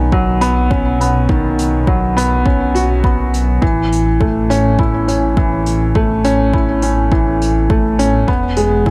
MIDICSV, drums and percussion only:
0, 0, Header, 1, 2, 480
1, 0, Start_track
1, 0, Tempo, 582524
1, 1064, Time_signature, 4, 2, 24, 8
1, 7337, End_track
2, 0, Start_track
2, 0, Title_t, "Drums"
2, 102, Note_on_c, 9, 36, 93
2, 184, Note_off_c, 9, 36, 0
2, 338, Note_on_c, 9, 42, 67
2, 420, Note_off_c, 9, 42, 0
2, 583, Note_on_c, 9, 36, 100
2, 666, Note_off_c, 9, 36, 0
2, 830, Note_on_c, 9, 42, 68
2, 913, Note_off_c, 9, 42, 0
2, 1063, Note_on_c, 9, 36, 97
2, 1146, Note_off_c, 9, 36, 0
2, 1306, Note_on_c, 9, 42, 67
2, 1388, Note_off_c, 9, 42, 0
2, 1543, Note_on_c, 9, 36, 91
2, 1626, Note_off_c, 9, 36, 0
2, 1792, Note_on_c, 9, 42, 71
2, 1875, Note_off_c, 9, 42, 0
2, 2024, Note_on_c, 9, 36, 90
2, 2106, Note_off_c, 9, 36, 0
2, 2267, Note_on_c, 9, 42, 60
2, 2349, Note_off_c, 9, 42, 0
2, 2503, Note_on_c, 9, 36, 95
2, 2586, Note_off_c, 9, 36, 0
2, 2748, Note_on_c, 9, 42, 63
2, 2831, Note_off_c, 9, 42, 0
2, 2984, Note_on_c, 9, 36, 95
2, 3067, Note_off_c, 9, 36, 0
2, 3232, Note_on_c, 9, 42, 62
2, 3314, Note_off_c, 9, 42, 0
2, 3465, Note_on_c, 9, 36, 80
2, 3548, Note_off_c, 9, 36, 0
2, 3713, Note_on_c, 9, 42, 64
2, 3795, Note_off_c, 9, 42, 0
2, 3945, Note_on_c, 9, 36, 89
2, 4027, Note_off_c, 9, 36, 0
2, 4187, Note_on_c, 9, 42, 62
2, 4269, Note_off_c, 9, 42, 0
2, 4425, Note_on_c, 9, 36, 99
2, 4507, Note_off_c, 9, 36, 0
2, 4664, Note_on_c, 9, 42, 57
2, 4746, Note_off_c, 9, 42, 0
2, 4905, Note_on_c, 9, 36, 84
2, 4988, Note_off_c, 9, 36, 0
2, 5143, Note_on_c, 9, 42, 62
2, 5226, Note_off_c, 9, 42, 0
2, 5384, Note_on_c, 9, 36, 82
2, 5467, Note_off_c, 9, 36, 0
2, 5619, Note_on_c, 9, 42, 64
2, 5702, Note_off_c, 9, 42, 0
2, 5864, Note_on_c, 9, 36, 85
2, 5946, Note_off_c, 9, 36, 0
2, 6109, Note_on_c, 9, 42, 68
2, 6191, Note_off_c, 9, 42, 0
2, 6344, Note_on_c, 9, 36, 95
2, 6426, Note_off_c, 9, 36, 0
2, 6584, Note_on_c, 9, 42, 69
2, 6667, Note_off_c, 9, 42, 0
2, 6823, Note_on_c, 9, 36, 89
2, 6906, Note_off_c, 9, 36, 0
2, 7056, Note_on_c, 9, 42, 68
2, 7138, Note_off_c, 9, 42, 0
2, 7302, Note_on_c, 9, 36, 88
2, 7337, Note_off_c, 9, 36, 0
2, 7337, End_track
0, 0, End_of_file